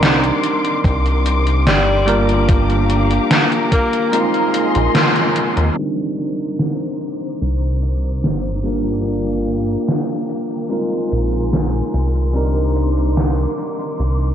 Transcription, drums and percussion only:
0.03 snare, closed hi-hat
0.24 closed hi-hat
0.44 closed hi-hat
0.65 closed hi-hat
0.84 kick, closed hi-hat
1.06 closed hi-hat
1.26 closed hi-hat
1.47 closed hi-hat
1.67 snare, closed hi-hat
2.08 closed hi-hat
2.29 closed hi-hat
2.49 kick, closed hi-hat
2.70 closed hi-hat
2.90 closed hi-hat
3.11 closed hi-hat
3.31 snare, closed hi-hat
3.52 closed hi-hat
3.72 kick, closed hi-hat
3.93 closed hi-hat
4.13 closed hi-hat
4.34 closed hi-hat
4.54 closed hi-hat
4.75 closed hi-hat
4.95 snare, closed hi-hat
5.16 closed hi-hat
5.36 closed hi-hat
5.57 closed hi-hat
5.77 closed hi-hat, crash
6.18 closed hi-hat
6.40 closed hi-hat
6.59 snare, closed hi-hat
6.80 closed hi-hat
7.01 closed hi-hat
7.22 closed hi-hat
7.42 closed hi-hat
7.63 closed hi-hat
7.83 closed hi-hat
8.04 closed hi-hat
8.24 snare, closed hi-hat
8.45 closed hi-hat
8.65 closed hi-hat
8.86 closed hi-hat
9.06 closed hi-hat
9.28 closed hi-hat
9.48 closed hi-hat
9.69 closed hi-hat
9.89 snare, closed hi-hat
10.10 closed hi-hat
10.29 closed hi-hat
10.51 closed hi-hat
10.71 closed hi-hat
10.92 closed hi-hat
11.12 closed hi-hat
11.33 closed hi-hat
11.53 snare, closed hi-hat
11.74 closed hi-hat
11.94 closed hi-hat
12.15 closed hi-hat
12.35 closed hi-hat
12.56 closed hi-hat
12.76 closed hi-hat
12.97 closed hi-hat
13.17 snare, closed hi-hat
13.39 closed hi-hat
13.58 closed hi-hat
13.80 closed hi-hat
14.00 closed hi-hat
14.21 closed hi-hat

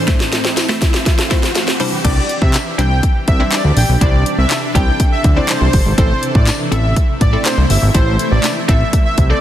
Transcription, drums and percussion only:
0.08 kick, snare, closed hi-hat
0.20 snare
0.32 snare, closed hi-hat
0.45 snare
0.57 snare, closed hi-hat, tambourine
0.69 snare
0.82 kick, snare, closed hi-hat
0.94 snare
1.06 kick, snare, closed hi-hat
1.19 snare
1.31 kick, snare, closed hi-hat
1.43 snare
1.55 snare, closed hi-hat, tambourine
1.68 snare
1.80 open hi-hat
2.05 kick, closed hi-hat, crash
2.29 closed hi-hat
2.42 kick
2.54 snare, clap, closed hi-hat, tambourine
2.79 closed hi-hat
3.03 kick, closed hi-hat
3.28 kick, closed hi-hat
3.52 snare, clap, closed hi-hat, tambourine
3.77 open hi-hat
4.01 kick, closed hi-hat
4.26 closed hi-hat
4.51 snare, clap, closed hi-hat, tambourine
4.75 kick, closed hi-hat
5.00 kick, closed hi-hat
5.24 kick, closed hi-hat
5.49 snare, clap, closed hi-hat, tambourine
5.73 kick, open hi-hat
5.98 kick, closed hi-hat
6.23 closed hi-hat
6.35 kick
6.47 snare, clap, closed hi-hat, tambourine
6.72 closed hi-hat
6.96 kick, closed hi-hat
7.21 kick, closed hi-hat
7.45 snare, clap, closed hi-hat, tambourine
7.70 open hi-hat
7.95 kick, closed hi-hat
8.19 closed hi-hat
8.44 snare, clap, closed hi-hat, tambourine
8.69 kick, closed hi-hat
8.93 kick, closed hi-hat
9.18 kick, closed hi-hat

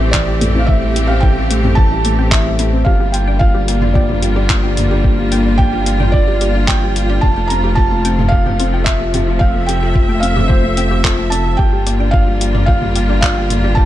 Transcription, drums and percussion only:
0.14 kick, clap
0.41 closed hi-hat, mid tom
0.69 kick
0.96 closed hi-hat
1.23 kick
1.51 closed hi-hat
1.64 mid tom
1.77 kick
2.05 closed hi-hat
2.32 kick, clap
2.59 closed hi-hat
2.86 kick
3.14 closed hi-hat
3.41 kick
3.68 closed hi-hat
3.82 mid tom
3.95 kick
4.09 mid tom
4.22 closed hi-hat
4.50 kick, clap
4.77 closed hi-hat, mid tom
5.04 kick
5.32 closed hi-hat
5.59 kick
5.86 closed hi-hat
6.00 mid tom
6.14 kick
6.41 closed hi-hat
6.68 kick, clap
6.96 closed hi-hat
7.23 kick
7.50 closed hi-hat
7.78 kick
8.05 closed hi-hat
8.19 mid tom
8.32 kick
8.46 mid tom
8.60 closed hi-hat
8.87 kick, clap
9.14 closed hi-hat, mid tom
9.41 kick
9.69 closed hi-hat
9.96 kick
10.23 closed hi-hat
10.37 mid tom
10.50 kick
10.77 closed hi-hat
11.05 kick, clap
11.32 closed hi-hat
11.59 kick
11.87 closed hi-hat
12.14 kick
12.41 closed hi-hat
12.55 mid tom
12.68 kick
12.82 mid tom
12.96 closed hi-hat
13.23 kick, clap
13.50 closed hi-hat, mid tom
13.77 kick

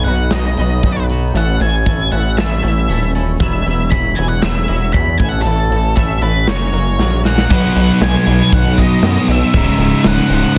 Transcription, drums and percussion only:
0.06 open hi-hat
0.31 snare, open hi-hat
0.57 open hi-hat
0.83 kick, open hi-hat
1.09 open hi-hat
1.35 open hi-hat
1.61 open hi-hat
1.86 kick, open hi-hat
2.12 open hi-hat
2.38 snare, open hi-hat
2.64 open hi-hat
2.89 open hi-hat
3.15 open hi-hat
3.40 kick, open hi-hat
3.67 open hi-hat
3.92 kick, open hi-hat
4.17 open hi-hat
4.42 snare, open hi-hat
4.68 open hi-hat
4.94 kick, open hi-hat
5.20 kick, open hi-hat
5.46 open hi-hat
5.72 open hi-hat
5.97 kick, open hi-hat
6.22 open hi-hat
6.47 snare, open hi-hat
6.74 open hi-hat
6.99 snare
7.25 snare
7.38 snare
7.50 kick, crash
7.77 crash
8.02 snare, crash
8.27 crash
8.53 kick, crash
8.78 kick, crash
9.03 snare, crash
9.28 crash
9.53 kick, crash
9.80 crash
10.04 snare, crash
10.31 crash

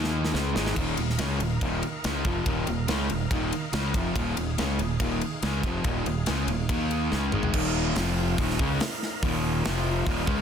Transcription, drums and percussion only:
0.04 snare
0.25 snare
0.35 snare
0.56 snare
0.66 snare
0.76 kick, ride, crash
0.97 ride
1.10 snare
1.19 snare, ride
1.40 ride
1.61 kick, ride
1.83 ride
2.04 snare, ride
2.25 kick, ride
2.46 kick, ride
2.67 ride
2.88 snare, ride
3.10 ride
3.31 kick, ride
3.53 ride
3.73 snare, ride
3.94 kick, ride
4.16 kick, ride
4.37 ride
4.58 snare, ride
4.79 ride
5.00 kick, ride
5.21 ride
5.42 snare, ride
5.63 kick, ride
5.84 kick, ride
6.06 ride
6.26 snare, ride
6.48 ride
6.69 kick, ride
6.91 ride
7.12 snare
7.32 mid tom
7.43 floor tom
7.54 kick, crash
7.96 snare, open hi-hat
8.38 kick, open hi-hat
8.50 snare
8.59 kick
8.80 snare, open hi-hat
9.03 snare
9.23 kick, open hi-hat
9.65 snare, open hi-hat
10.07 kick, open hi-hat
10.27 kick

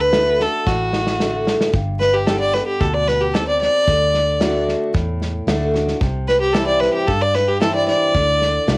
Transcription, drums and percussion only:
0.13 snare, hi-hat pedal
0.40 snare
0.67 kick, snare
0.93 snare
1.07 snare
1.20 snare, hi-hat pedal
1.47 snare
1.61 snare
1.74 kick, snare
2.01 snare
2.27 snare, hi-hat pedal
2.54 snare
2.81 kick, snare
3.08 snare
3.35 snare, hi-hat pedal
3.62 snare
3.87 kick, snare
4.14 snare
4.41 snare, hi-hat pedal
4.69 snare
4.95 kick, snare
5.22 snare
5.48 snare, hi-hat pedal
5.75 snare
5.88 snare
6.01 kick, snare
6.29 snare
6.55 snare, hi-hat pedal
6.82 snare
7.08 kick, snare
7.35 snare
7.62 snare, hi-hat pedal
7.88 snare
8.15 kick, snare
8.42 snare
8.68 snare, hi-hat pedal

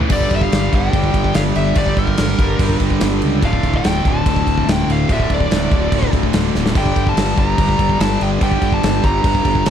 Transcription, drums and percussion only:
0.10 kick, crash
0.21 kick
0.31 kick, crash
0.41 kick
0.52 snare, crash
0.73 kick, crash
0.93 kick, crash
1.04 kick
1.14 kick, crash
1.24 kick
1.34 snare, crash
1.55 crash
1.75 kick, crash
1.86 kick
1.97 kick, crash
2.07 kick
2.17 snare, crash
2.39 kick, crash
2.59 kick, crash
2.70 kick
2.80 kick, crash
2.90 kick
3.00 snare, crash
3.22 crash
3.43 kick, crash
3.53 kick
3.63 kick, crash
3.74 kick
3.84 snare, crash
4.05 kick, crash
4.26 kick, crash
4.36 kick
4.47 kick, crash
4.58 kick
4.68 snare, crash
4.90 crash
5.09 kick, crash
5.20 kick
5.30 kick, crash
5.40 kick
5.51 snare, crash
5.71 kick, crash
5.92 kick, crash
6.03 kick
6.13 kick, crash
6.23 kick
6.33 snare, crash
6.55 snare
6.66 snare
6.75 kick, crash
6.86 kick
6.96 kick, crash
7.07 kick
7.17 snare, crash
7.38 kick, crash
7.58 kick, crash
7.69 kick
7.79 kick, crash
7.89 kick
8.00 snare, crash
8.21 crash
8.41 kick, crash
8.52 kick
8.62 kick, crash
8.72 kick
8.83 snare, crash
9.04 kick, crash
9.24 kick, crash
9.35 kick
9.45 kick, crash
9.55 kick
9.66 snare, crash

